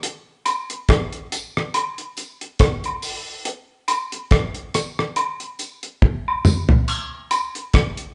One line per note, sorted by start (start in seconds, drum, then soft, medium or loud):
0.03 closed hi-hat medium
0.45 closed hi-hat medium
0.45 tambourine soft
0.45 high woodblock medium
0.70 closed hi-hat medium
0.89 kick medium
0.89 cross-stick loud
0.89 closed hi-hat medium
1.13 closed hi-hat soft
1.32 closed hi-hat medium
1.32 tambourine medium
1.57 cross-stick medium
1.74 closed hi-hat medium
1.74 high woodblock medium
1.98 closed hi-hat soft
2.17 closed hi-hat medium
2.17 tambourine soft
2.41 closed hi-hat medium
2.59 kick loud
2.59 cross-stick loud
2.59 closed hi-hat medium
2.84 closed hi-hat soft
2.84 high woodblock soft
3.02 open hi-hat medium
3.02 tambourine medium
3.45 closed hi-hat medium
3.88 closed hi-hat medium
3.88 tambourine soft
3.88 high woodblock medium
4.12 closed hi-hat medium
4.31 kick loud
4.31 cross-stick loud
4.31 closed hi-hat medium
4.55 closed hi-hat soft
4.74 cross-stick medium
4.74 closed hi-hat medium
4.74 tambourine medium
4.99 cross-stick medium
5.16 closed hi-hat medium
5.16 high woodblock medium
5.40 closed hi-hat soft
5.59 closed hi-hat medium
5.59 tambourine soft
5.83 closed hi-hat medium
6.02 kick loud
6.02 high tom medium
6.28 high woodblock medium
6.45 mid tom medium
6.45 tambourine medium
6.69 floor tom medium
6.88 splash medium
7.31 closed hi-hat medium
7.31 tambourine soft
7.31 high woodblock medium
7.55 closed hi-hat medium
7.74 kick loud
7.74 cross-stick loud
7.74 closed hi-hat medium
7.97 closed hi-hat soft